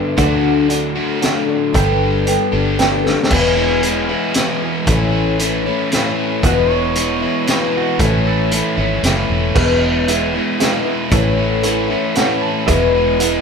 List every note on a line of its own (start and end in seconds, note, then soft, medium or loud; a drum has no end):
0.00 0.18 G2 medium
0.00 0.16 D3 medium
0.00 0.16 G3 medium
0.00 0.17 G3 medium
0.00 0.17 B3 medium
0.00 0.18 B3 medium
0.00 0.17 D4 medium
0.00 0.19 D4 medium
0.00 0.17 G4 medium
0.00 0.18 A4 medium
0.00 0.16 E5 medium
0.17 1.01 D2 loud
0.17 0.94 D3 medium
0.17 0.95 F#3 loud
0.17 0.97 A3 loud
0.17 0.96 D4 medium
0.17 0.94 F#4 loud
0.17 0.52 A4 loud
0.17 0.70 A4 medium
0.17 0.52 D5 medium
0.17 0.52 F#5 loud
0.17 kick loud
0.17 closed hi-hat medium
0.68 1.18 D3 medium
0.68 1.20 D4 medium
0.68 1.20 F#4 medium
0.68 1.04 A4 medium
0.68 1.21 A4 medium
0.68 1.04 D5 medium
0.68 1.04 F#5 medium
0.68 closed hi-hat medium
0.95 1.74 D3 medium
0.95 1.74 F#3 medium
0.95 1.74 A3 medium
0.95 1.73 D4 medium
0.95 1.73 F#4 medium
1.20 1.47 D3 medium
1.20 1.48 D4 medium
1.20 1.48 F#4 medium
1.20 1.57 A4 medium
1.20 1.46 A4 medium
1.20 1.57 D5 medium
1.20 1.56 F#5 medium
1.20 snare medium
1.20 closed hi-hat medium
1.47 1.73 D4 soft
1.47 1.74 F#4 medium
1.47 1.74 A4 medium
1.74 2.37 G1 loud
1.74 2.51 G2 medium
1.74 2.52 D3 medium
1.74 2.52 G3 loud
1.74 2.52 B3 loud
1.74 2.52 D4 medium
1.74 2.51 G4 loud
1.74 2.27 A4 loud
1.74 2.09 A4 medium
1.74 2.09 B4 medium
1.74 2.09 G5 loud
1.74 kick loud
1.74 closed hi-hat medium
2.25 2.52 G3 medium
2.25 2.52 B3 medium
2.25 2.53 D4 medium
2.25 2.61 A4 medium
2.25 2.50 A4 medium
2.25 2.61 B4 medium
2.25 2.61 G5 medium
2.25 closed hi-hat medium
2.51 3.15 G1 medium
2.51 3.30 G2 medium
2.51 3.31 D3 medium
2.51 3.31 G3 medium
2.51 3.30 B3 medium
2.51 3.30 D4 medium
2.51 3.29 G4 medium
2.51 2.78 A4 medium
2.77 3.05 G3 medium
2.77 3.04 B3 medium
2.77 3.05 D4 medium
2.77 3.13 A4 medium
2.77 3.02 A4 medium
2.77 3.13 B4 medium
2.77 3.13 G5 medium
2.77 snare medium
2.77 closed hi-hat medium
3.04 3.30 B3 soft
3.04 3.31 D4 soft
3.04 3.31 A4 medium
3.04 snare medium
3.23 snare medium
3.31 4.13 E1 loud
3.31 3.83 E2 medium
3.31 3.84 B2 loud
3.31 3.59 E3 loud
3.31 3.57 G#3 loud
3.31 3.56 B3 loud
3.31 3.56 E4 loud
3.31 3.83 G#4 loud
3.31 kick loud
3.31 crash loud
3.57 3.82 E3 medium
3.57 3.83 G#3 medium
3.57 3.83 B3 medium
3.57 3.85 E4 medium
3.82 4.11 E3 medium
3.82 4.09 G#3 medium
3.82 4.08 B3 medium
3.82 4.09 E4 medium
3.82 4.07 G#4 medium
3.82 closed hi-hat medium
4.08 4.35 E3 medium
4.08 4.35 G#3 medium
4.08 4.36 B3 medium
4.08 4.37 E4 medium
4.08 4.35 G#4 medium
4.34 4.86 E2 medium
4.34 4.86 B2 medium
4.34 4.87 E3 loud
4.34 4.86 G#3 loud
4.34 4.87 B3 loud
4.34 4.89 E4 loud
4.34 4.60 G#4 medium
4.34 snare medium
4.34 closed hi-hat medium
4.61 4.86 E3 soft
4.61 4.87 G#3 medium
4.61 4.88 B3 soft
4.61 4.88 G#4 medium
4.86 5.70 A1 loud
4.86 5.39 A2 loud
4.86 5.39 E3 loud
4.86 5.14 A3 loud
4.86 5.13 C#4 loud
4.86 5.11 E4 loud
4.86 kick loud
4.86 closed hi-hat medium
5.12 5.39 A3 medium
5.12 5.40 C#4 medium
5.12 5.42 E4 medium
5.39 5.92 E3 medium
5.39 5.68 A3 medium
5.39 5.66 C#4 medium
5.39 5.66 E4 medium
5.39 closed hi-hat medium
5.66 5.92 A3 medium
5.66 5.93 C#4 medium
5.66 5.94 E4 medium
5.92 6.42 A2 medium
5.92 6.44 E3 loud
5.92 6.43 A3 loud
5.92 6.43 C#4 loud
5.92 6.46 E4 loud
5.92 snare medium
5.92 closed hi-hat medium
6.43 7.25 E1 loud
6.43 6.96 E2 medium
6.43 6.96 B2 medium
6.43 6.72 E3 loud
6.43 6.70 G#3 loud
6.43 6.70 B3 loud
6.43 6.69 E4 loud
6.43 6.58 F#4 loud
6.43 kick loud
6.43 closed hi-hat medium
6.57 6.70 B4 medium
6.69 6.95 E3 medium
6.69 6.96 G#3 medium
6.69 6.97 B3 medium
6.69 6.98 E4 medium
6.69 7.71 C#5 medium
6.95 7.24 E3 medium
6.95 7.23 G#3 medium
6.95 7.22 B3 medium
6.95 7.21 E4 medium
6.95 closed hi-hat medium
7.22 7.48 E3 medium
7.22 7.47 G#3 medium
7.22 7.47 B3 medium
7.22 7.49 E4 medium
7.47 7.98 E2 loud
7.47 7.98 B2 loud
7.47 7.99 E3 loud
7.47 7.99 G#3 loud
7.47 7.99 B3 loud
7.47 8.01 E4 loud
7.47 snare medium
7.47 closed hi-hat medium
7.77 8.01 F#4 medium
7.99 8.61 A1 loud
7.99 8.51 A2 loud
7.99 8.51 E3 loud
7.99 8.26 A3 loud
7.99 8.25 C#4 loud
7.99 8.24 E4 loud
7.99 8.26 A4 medium
7.99 kick loud
7.99 closed hi-hat medium
8.25 8.51 A3 medium
8.25 8.52 C#4 medium
8.25 8.54 E4 medium
8.25 8.52 A4 medium
8.51 9.03 E3 medium
8.51 8.79 A3 medium
8.51 8.78 C#4 medium
8.51 8.77 E4 medium
8.51 closed hi-hat medium
8.77 9.01 G#1 medium
8.77 9.03 A3 medium
8.77 9.04 C#4 medium
8.77 9.06 E4 medium
9.03 9.27 F#1 medium
9.03 9.54 A2 medium
9.03 9.56 E3 loud
9.03 9.55 A3 medium
9.03 9.55 C#4 loud
9.03 9.57 E4 loud
9.03 snare medium
9.03 closed hi-hat medium
9.30 9.53 E1 medium
9.55 10.38 E1 loud
9.55 10.07 E2 loud
9.55 10.08 B2 loud
9.55 9.84 E3 loud
9.55 9.82 G#3 loud
9.55 9.81 B3 loud
9.55 9.89 E4 loud
9.55 9.81 E4 loud
9.55 9.89 G#4 medium
9.55 9.89 B4 medium
9.55 9.89 E5 loud
9.55 kick loud
9.55 crash loud
9.82 10.07 E3 medium
9.82 10.07 G#3 medium
9.82 10.08 B3 medium
9.82 10.09 E4 medium
10.07 10.37 E3 medium
10.07 10.35 G#3 medium
10.07 10.34 B3 medium
10.07 10.41 E4 medium
10.07 10.34 E4 medium
10.07 10.41 G#4 medium
10.07 10.41 B4 medium
10.07 10.41 E5 medium
10.07 closed hi-hat medium
10.34 10.61 E3 medium
10.34 10.60 G#3 medium
10.34 10.61 B3 medium
10.34 10.62 E4 medium
10.60 11.10 E2 loud
10.60 11.11 B2 loud
10.60 11.12 E3 loud
10.60 11.11 G#3 loud
10.60 11.11 B3 loud
10.60 10.94 E4 medium
10.60 11.14 E4 loud
10.60 10.94 G#4 medium
10.60 10.93 B4 medium
10.60 10.94 E5 medium
10.60 snare loud
10.60 closed hi-hat medium
10.85 11.10 E3 soft
10.85 11.11 G#3 soft
10.85 11.11 B3 medium
10.85 11.11 E4 medium
11.11 11.94 A1 loud
11.11 11.64 A2 medium
11.11 11.63 E3 loud
11.11 11.39 A3 loud
11.11 11.38 C#4 loud
11.11 11.46 E4 loud
11.11 11.37 E4 loud
11.11 11.45 A4 medium
11.11 11.46 C#5 medium
11.11 11.46 E5 loud
11.11 kick loud
11.11 closed hi-hat medium
11.38 11.64 A3 medium
11.38 11.64 C#4 medium
11.38 11.66 E4 medium
11.63 12.16 E3 medium
11.63 11.91 A3 medium
11.63 11.91 C#4 medium
11.63 11.97 E4 medium
11.63 11.90 E4 medium
11.63 11.97 A4 medium
11.63 11.97 C#5 medium
11.63 11.97 F#5 medium
11.63 closed hi-hat medium
11.90 12.16 A3 medium
11.90 12.17 C#4 medium
11.90 12.18 E4 medium
12.15 12.66 A2 loud
12.15 12.69 E3 medium
12.15 12.67 A3 loud
12.15 12.67 C#4 loud
12.15 12.50 E4 medium
12.15 12.71 E4 loud
12.15 12.50 A4 medium
12.15 12.50 C#5 medium
12.15 12.40 E5 medium
12.15 12.50 F#5 medium
12.15 snare medium
12.15 closed hi-hat medium
12.41 12.66 A5 medium
12.66 13.41 E1 loud
12.66 13.20 E2 loud
12.66 13.20 B2 loud
12.66 12.97 E3 loud
12.66 12.95 G#3 loud
12.66 13.01 E4 loud
12.66 13.01 G#4 medium
12.66 13.01 B4 medium
12.66 13.01 E5 loud
12.66 kick loud
12.66 closed hi-hat medium
12.71 12.94 B3 loud
12.71 12.94 E4 loud
12.95 13.20 E3 medium
12.95 13.20 G#3 medium
12.95 13.21 B3 medium
12.95 13.22 E4 medium
13.20 13.41 E3 medium
13.20 13.41 G#3 medium
13.20 13.41 B3 medium
13.20 13.41 E4 medium
13.20 13.41 G#4 medium
13.20 13.41 B4 medium
13.20 13.41 F#5 medium
13.20 closed hi-hat medium